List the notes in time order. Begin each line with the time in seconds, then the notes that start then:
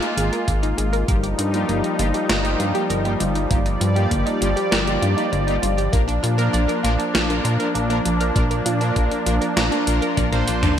Already playing: G#3 A#3 F4
0.02 D#4, closed hi-hat
0.17 G#1 G#4, closed hi-hat
0.32 A#4, closed hi-hat
0.47 G#1 A#3, kick, closed hi-hat
0.63 D#4, closed hi-hat
0.78 G#1 G#4, closed hi-hat
0.93 A#4, closed hi-hat
1.08 G1 F3 G3 A#3 D#4 F4 G4 A#4, kick, closed hi-hat
1.23 G4, closed hi-hat
1.38 G2 F4, closed hi-hat
1.54 A#3 D#4 F4 G4, closed hi-hat
1.69 G1 A#3, closed hi-hat
1.84 D#4, closed hi-hat
1.99 G1 A#3 D#4 F4 G4, closed hi-hat
2.14 G4, closed hi-hat
2.29 G1 A#3, snare, closed hi-hat
2.44 A#3 D#4 F4 G4, closed hi-hat
2.60 G2 F4, closed hi-hat
2.75 A#3 D#4 F4 G4, closed hi-hat
2.90 G1 A#4, closed hi-hat
3.05 A#3 D#4 F4 G4, closed hi-hat
3.20 G1 F4, closed hi-hat
3.35 D#4, closed hi-hat
3.50 G1 A#3 D#4 F4 G4 D5, kick, closed hi-hat
3.66 D#4, closed hi-hat
3.81 G2 F4, closed hi-hat
3.96 A#3 D#4 F4 G4, closed hi-hat
4.11 G1 A#3, kick, closed hi-hat
4.26 D#4, closed hi-hat
4.41 G1 A#3 D#4 F4 G4, closed hi-hat
4.56 G4, closed hi-hat
4.71 G1 A#4, snare, closed hi-hat
4.87 A#3 D#4 F4 G4, closed hi-hat
5.02 G2 F4, closed hi-hat
5.17 A#3 D#4 F4 G4, closed hi-hat
5.32 G1 A#3, closed hi-hat
5.47 A#3 D#4 F4 G4, closed hi-hat
5.62 G1 F4, closed hi-hat
5.78 G4, closed hi-hat
5.93 A#1 F3 A#3 D4 F4 A#4, kick, closed hi-hat
6.08 D4, closed hi-hat
6.23 A#2 F4, closed hi-hat
6.38 A#3 D4 F4 A#4, closed hi-hat
6.53 A#1 D5, closed hi-hat
6.68 A#4, closed hi-hat
6.83 A#1 A#3 D4 F4 A#4, snare, closed hi-hat
6.99 D4, closed hi-hat
7.14 A#1 A#3, snare, closed hi-hat
7.29 A#3 D4 F4 A#4, closed hi-hat
7.44 A#2 F4, closed hi-hat
7.59 A#3 D4 F4 A#4, closed hi-hat
7.75 A#1 A#3, closed hi-hat
7.90 A#3 D4 F4 A#4, closed hi-hat
8.05 A#1 F4, closed hi-hat
8.20 A#4, closed hi-hat
8.35 A#1 A#3 D4 F4 A#4 D5, kick, closed hi-hat
8.51 A#4, closed hi-hat
8.66 A#2 F4, closed hi-hat
8.81 A#3 D4 F4 A#4, closed hi-hat
8.96 A#1 A#3, kick, closed hi-hat
9.11 D4, closed hi-hat
9.26 A#1 A#3 D4 F4 A#4, closed hi-hat
9.41 A#4, closed hi-hat
9.56 A#1 A#3, snare, closed hi-hat
9.71 A#3 D4 F4 A#4, closed hi-hat
9.87 A#1 A#3 D4 F4 A#4, closed hi-hat
10.02 A#4, closed hi-hat
10.17 A#1 D5, kick, closed hi-hat, high tom
10.32 A#3 D4 F4 A#4 C5, closed hi-hat, high tom
10.47 A#1 F4, closed hi-hat
10.63 D4, closed hi-hat, mid tom